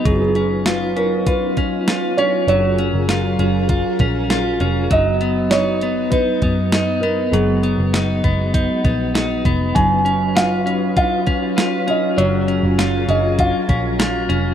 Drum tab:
HH |xxxxxxxx|xxxxxxxx|xxxxxxxx|xxxxxxxx|
SD |--o---o-|--o---o-|--o---o-|--o---o-|
BD |o---oo--|----oo--|o---oo--|---ooo-o|

HH |xxxxxxxx|xxxxxxxx|
SD |--o---o-|--o---o-|
BD |o---oo--|----oo--|